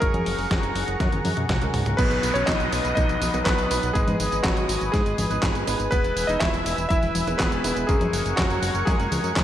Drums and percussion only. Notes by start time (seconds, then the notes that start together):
0.02 kick, closed hi-hat
0.14 closed hi-hat, high conga
0.26 open hi-hat
0.39 open hi-hat
0.51 kick, snare, closed hi-hat
0.63 closed hi-hat
0.76 open hi-hat
0.88 closed hi-hat
1.00 kick, snare, closed hi-hat, high tom
1.12 closed hi-hat, high tom
1.25 open hi-hat, high conga
1.37 closed hi-hat, mid tom
1.49 kick, snare, closed hi-hat, mid tom
1.62 closed hi-hat
1.74 mid tom, open hi-hat
1.86 closed hi-hat, mid tom
1.99 kick, closed hi-hat, tambourine, crash
2.11 closed hi-hat, tambourine
2.23 open hi-hat, tambourine
2.35 closed hi-hat, tambourine
2.48 kick, snare, clap, closed hi-hat, tambourine
2.60 closed hi-hat, tambourine
2.72 open hi-hat, tambourine
2.85 closed hi-hat, tambourine
2.97 kick, closed hi-hat, tambourine, high conga
3.09 closed hi-hat, tambourine
3.22 open hi-hat, tambourine, high conga
3.34 closed hi-hat, tambourine
3.46 kick, snare, clap, closed hi-hat, tambourine
3.58 closed hi-hat, tambourine
3.71 open hi-hat, tambourine
3.83 closed hi-hat, tambourine
3.95 kick, closed hi-hat, tambourine
4.08 closed hi-hat, tambourine, high conga
4.20 open hi-hat, tambourine
4.32 closed hi-hat, tambourine
4.44 kick, snare, clap, closed hi-hat, tambourine
4.57 closed hi-hat, tambourine
4.69 open hi-hat, tambourine
4.81 closed hi-hat, tambourine
4.94 kick, snare, closed hi-hat, tambourine
5.06 closed hi-hat, tambourine
5.18 open hi-hat, tambourine, high conga
5.31 closed hi-hat, tambourine
5.43 kick, snare, clap, closed hi-hat, tambourine
5.55 closed hi-hat, tambourine
5.67 open hi-hat, tambourine
5.80 closed hi-hat, tambourine
5.92 kick, closed hi-hat, tambourine
6.04 closed hi-hat, tambourine
6.17 open hi-hat, tambourine
6.29 closed hi-hat, tambourine
6.41 kick, snare, clap, closed hi-hat, tambourine
6.54 closed hi-hat, tambourine
6.66 open hi-hat, tambourine
6.78 closed hi-hat, tambourine
6.90 kick, closed hi-hat, tambourine, high conga
7.03 closed hi-hat, tambourine
7.15 open hi-hat, tambourine, high conga
7.27 closed hi-hat, tambourine
7.40 kick, snare, clap, closed hi-hat, tambourine
7.52 closed hi-hat, tambourine
7.64 open hi-hat, tambourine
7.77 closed hi-hat, tambourine
7.89 kick, closed hi-hat, tambourine
8.01 closed hi-hat, tambourine, high conga
8.13 open hi-hat, tambourine
8.26 closed hi-hat, tambourine
8.38 kick, snare, clap, closed hi-hat, tambourine
8.50 closed hi-hat, tambourine
8.63 open hi-hat, tambourine
8.75 closed hi-hat, tambourine
8.87 kick, snare, closed hi-hat, tambourine
9.00 closed hi-hat, tambourine
9.12 open hi-hat, tambourine, high conga
9.24 closed hi-hat, tambourine
9.36 kick, snare, clap, closed hi-hat, tambourine